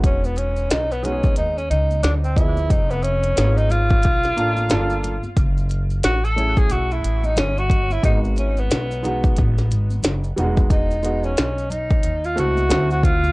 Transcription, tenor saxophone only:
X:1
M:4/4
L:1/16
Q:"Swing 16ths" 1/4=90
K:E
V:1 name="Tenor saxophone"
C B, C2 D B, C2 D C D2 =D ^B, E2 | _E _C ^C3 E =F8- F2 | z4 F A2 G F E2 D C F2 E | D2 C B,6 z6 z |
D3 C3 D3 ^E F3 F E2 |]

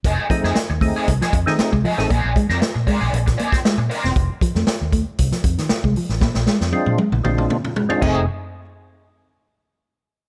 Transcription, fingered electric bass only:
X:1
M:4/4
L:1/16
Q:1/4=116
K:Bb
V:1 name="Fingered electric bass" clef=bass
F,,, z2 F,, z E,,2 z C,, z F,, z2 C,, z A,,, | B,,, B,,, z F,, z B,, z B,,, B,,,2 z3 B,, z =E,,, | F,,, z2 F,, z E,,2 z C,, z F,, z2 C,, z A,,, | B,,, B,,, z F,, z B,, z B,,, B,,,2 z4 F,,,2 |
z16 |]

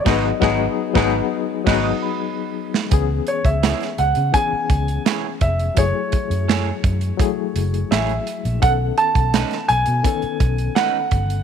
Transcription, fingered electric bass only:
X:1
M:4/4
L:1/16
Q:1/4=84
K:C#m
V:1 name="Fingered electric bass" clef=bass
G,,,2 G,,,2 z G,,,2 z2 G,,,2 z4 z | C,,2 z C,,2 z C,, C, z2 C,,2 z2 ^E,,,2 | F,,, z2 F,,3 F,,2 z2 F,,,2 A,,,2 z ^A,,, | B,,,2 z B,,,2 z B,,, B,, z2 B,,,2 z2 =G,,,2 |]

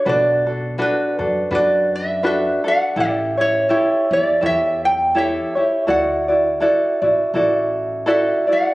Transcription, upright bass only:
X:1
M:4/4
L:1/8
Q:"Swing" 1/4=82
K:D
V:1 name="Upright bass" clef=bass
B,,,3 F,, F,,4 | A,,,3 E,, E,,4 | D,,3 A,,, A,,,4 |]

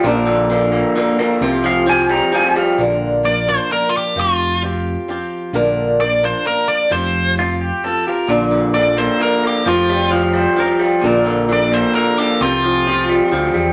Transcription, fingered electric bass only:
X:1
M:3/4
L:1/8
Q:1/4=131
K:Bblyd
V:1 name="Fingered electric bass" clef=bass
B,,,4 z2 | C,,4 z2 | B,,,4 z2 | F,,,4 z2 |
B,,,4 z2 | F,,,4 z2 | B,,,4 z2 | F,,,4 z2 |
B,,,4 z2 | C,,4 D,, E,, |]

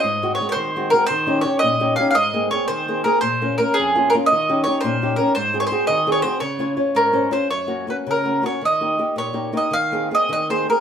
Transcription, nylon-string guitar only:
X:1
M:6/8
L:1/8
Q:3/8=112
K:Db
V:1 name="Nylon-string guitar"
A,, [A,CG] [A,CG] E, [A,CG] [A,CG] | E, [DE=G] [DEG] B,, [DEG] [DEG] | A,, [B,CA] [B,CA] E, [B,CA] [B,CA] | B,, [B,DF] [B,DF] F,, [B,DF] [B,DF] |
E, [DE=G] [DEG] B,, [DEG] [DEG] | A,, [CGA] [CGA] E, [CGA] [CGA] | D, [DFd] [DFd] A,, [DFc] [DFc] | [K:F#] F,, [A,CF] [A,CF] C, [A,CF] [A,CF] |
D, [A,D=G] [A,DG] A,, [A,DG] [A,DG] | D, [A,^B,G] [A,B,G] D, [A,B,G] [A,B,G] |]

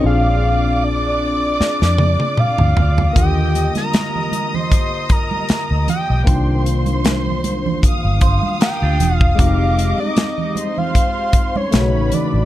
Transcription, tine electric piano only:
X:1
M:4/4
L:1/8
Q:"Swing 16ths" 1/4=77
K:Eb
V:1 name="Tine electric piano"
[CDFA]8 | [D,B,FG]8 | [E,B,DF]8 | [A,CE_G=G]6 [^C,=A,^D^F]2 |]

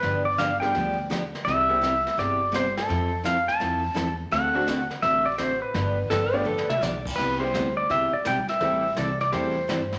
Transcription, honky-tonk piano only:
X:1
M:4/4
L:1/8
Q:"Swing" 1/4=168
K:C
V:1 name="Honky-tonk piano"
z3 [G,B,DFG] z4 | z [G,B,CEG] z6 | z8 | z [A,CD^FA] z6 |
z3 [A,B,DFG] z4 | z [G,B,CEG] z6 | [G,A,CEG] z3 [G,A,CEG] z3 |]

